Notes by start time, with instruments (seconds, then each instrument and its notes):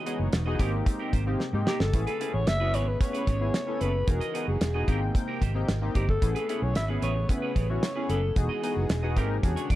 Already playing: analog synth pad E3 G#3 D#4 F#4
0.05 analog polysynth B3 D#4 F#4 G#4, clean electric guitar F#4 G#4 D#5, closed hi-hat
0.19 fingered electric bass F#1, muted clean electric guitar stroke
0.33 fingered electric bass E1, muted clean electric guitar stroke, snare, closed hi-hat
0.46 analog polysynth B3 D#4 F#4 G#4, clean electric guitar F#4 G#4 D#5
0.59 fingered electric bass G#1, analog synth pad C3 G#3 A#3 G4, analog polysynth A#3 C4 D#4 G4, clean electric guitar C4 G4 A#4, kick, closed hi-hat
0.73 muted clean electric guitar stroke
0.86 muted clean electric guitar stroke, kick, closed hi-hat
0.99 clean electric guitar C4 G4 A#4
1.13 fingered electric bass G#1, clean electric guitar C4 G4 C5, kick, closed hi-hat
1.26 analog polysynth A#3 C4 D#4 G4, muted clean electric guitar stroke
1.40 muted clean electric guitar stroke, snare
1.53 fingered electric bass G#2, analog polysynth A#3 C4 D#4 G4, muted clean electric guitar stroke
1.66 clean electric guitar C4 G4 A#4, alto saxophone G4, snare
1.80 fingered electric bass G1, alto saxophone A4, muted clean electric guitar stroke, snare
1.93 fingered electric bass A1, analog synth pad C#3 A3 B3 G#4, analog polysynth B3 C#4 E4 G#4, muted clean electric guitar stroke, kick, closed hi-hat
2.07 clean electric guitar C#4 G#4 B4, alto saxophone A4, closed hi-hat
2.20 analog polysynth B3 C#4 E4 G#4, clean electric guitar C#4 G#4 B4, closed hi-hat
2.34 fingered electric bass A1, alto saxophone C#5, muted clean electric guitar stroke
2.47 fingered electric bass F#1, alto saxophone E5, muted clean electric guitar stroke, snare, closed hi-hat
2.60 analog polysynth B3 C#4 E4 F#4, clean electric guitar C#4 G#4 B4
2.73 fingered electric bass G#1, clean electric guitar C#4 G#4 B4, alto saxophone C#5, closed hi-hat
2.87 alto saxophone B4, muted clean electric guitar stroke
3.00 analog polysynth B3 C#4 E4 B4, alto saxophone C#5, muted clean electric guitar stroke, kick, closed hi-hat
3.13 clean electric guitar C#4 G#4 B4, closed hi-hat
3.27 fingered electric bass G#1, clean electric guitar C#4 G#4 C#5, kick, closed hi-hat
3.40 analog polysynth B3 C#4 E4 G#4, muted clean electric guitar stroke
3.54 muted clean electric guitar stroke, snare, closed hi-hat
3.67 analog polysynth B3 C#4 E4 A4, muted clean electric guitar stroke
3.80 fingered electric bass F#1, clean electric guitar C#4 G#4 B4, alto saxophone B4, closed hi-hat
3.94 muted clean electric guitar stroke
4.07 fingered electric bass E1, analog synth pad E3 G#3 D#4 F#4, analog polysynth B3 D#4 F#4 G#4, alto saxophone A#4, muted clean electric guitar stroke, kick, closed hi-hat
4.21 clean electric guitar F#4 G#4 D#5, closed hi-hat
4.34 analog polysynth B3 D#4 F#4 G#4, clean electric guitar F#4 G#4 D#5, closed hi-hat
4.47 fingered electric bass F#1, alto saxophone G#4, muted clean electric guitar stroke
4.61 fingered electric bass E1, muted clean electric guitar stroke, snare, closed hi-hat
4.74 analog polysynth B3 D#4 F#4 G#4, clean electric guitar F#4 G#4 D#5
4.88 fingered electric bass G#1, analog synth pad C3 A#3 G5, analog polysynth A#3 C4 D#4 G5, clean electric guitar C4 G4 A#4, kick, closed hi-hat
5.01 muted clean electric guitar stroke
5.15 muted clean electric guitar stroke, kick, closed hi-hat
5.28 clean electric guitar C4 G4 A#4
5.41 fingered electric bass G#1, clean electric guitar C4 G4 C5, kick, closed hi-hat
5.55 analog polysynth A#3 C4 D#4 G4, muted clean electric guitar stroke
5.68 fingered electric bass G#1, muted clean electric guitar stroke, snare, closed hi-hat
5.82 analog polysynth A#3 C4 D#4 G4, muted clean electric guitar stroke
5.94 fingered electric bass G1, clean electric guitar C4 G4 A#4, alto saxophone G4, kick, closed hi-hat
6.08 alto saxophone A4, muted clean electric guitar stroke, kick
6.22 fingered electric bass A1, analog synth pad C#3 A3 B3 G#4, analog polysynth B3 C#4 E4 G#4, muted clean electric guitar stroke, kick, closed hi-hat
6.35 clean electric guitar C#4 G#4 B4, alto saxophone A4, closed hi-hat
6.48 analog polysynth B3 C#4 E4 G#4, clean electric guitar C#4 G#4 B4, closed hi-hat
6.62 fingered electric bass B1, alto saxophone C#5, muted clean electric guitar stroke
6.75 fingered electric bass G#1, alto saxophone E5, muted clean electric guitar stroke, snare, closed hi-hat
6.88 analog polysynth B3 C#4 E4 G#4, clean electric guitar C#4 G#4 B4
7.02 fingered electric bass A1, clean electric guitar C#4 G#4 B4, alto saxophone C#5, closed hi-hat
7.15 muted clean electric guitar stroke
7.29 analog polysynth B3 C#4 E4 B4, alto saxophone B4, muted clean electric guitar stroke, kick, closed hi-hat
7.42 clean electric guitar C#4 G#4 B4
7.55 fingered electric bass A1, clean electric guitar C#4 G#4 C#5, kick, closed hi-hat
7.69 analog polysynth B3 C#4 E4 F#4, alto saxophone C#5, muted clean electric guitar stroke
7.82 muted clean electric guitar stroke, snare, closed hi-hat
7.96 analog polysynth B3 C#4 E4 G#4, clean electric guitar C#4 G#4 B4
8.09 fingered electric bass F#1, clean electric guitar C#4 G#4 B4, alto saxophone A4, closed hi-hat
8.22 muted clean electric guitar stroke
8.36 fingered electric bass E1, analog synth pad E3 G#3 D#4 F#4, analog polysynth B3 D#4 F#4 G#4, alto saxophone G#4, muted clean electric guitar stroke, kick, closed hi-hat
8.49 clean electric guitar F#4 G#4 D#5
8.62 analog polysynth B3 D#4 F#4 G#4, clean electric guitar F#4 G#4 D#5, closed hi-hat
8.76 fingered electric bass F#1, muted clean electric guitar stroke
8.89 fingered electric bass E1, muted clean electric guitar stroke, snare, closed hi-hat
9.03 analog polysynth B3 D#4 F#4 G#4, clean electric guitar F#4 G#4 D#5
9.16 fingered electric bass G#1, analog synth pad C3 A#3 G4, clean electric guitar C4 G4 A#4, analog polysynth C4 D#4 G4 A#4, kick, closed hi-hat
9.30 muted clean electric guitar stroke
9.43 fingered electric bass E2, analog synth pad D3 C#4 F#4, analog polysynth C#4 D4 F#4 G#4, muted clean electric guitar stroke, kick, closed hi-hat
9.56 clean electric guitar D4 G#4 C#5, closed hi-hat
9.70 fingered electric bass E2, clean electric guitar D4 G#4 D5, kick, closed hi-hat